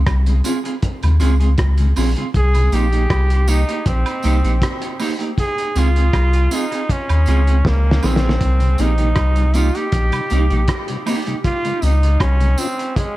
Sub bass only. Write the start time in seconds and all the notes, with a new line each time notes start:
0.07 C2
1.03 D#2
1.21 C#2
1.59 C#2
1.97 A#1
2.35 C2
2.72 A#1
3.11 C2
3.86 A#1
4.25 C2
4.44 A#1
5.76 C#2
6.14 C2
7.10 D#2
7.28 C#2
7.65 C#2
8.04 A#1
8.41 C2
8.79 A#1
9.17 C2
9.93 A#1
10.32 C2
10.51 A#1
11.83 C#2
12.21 C2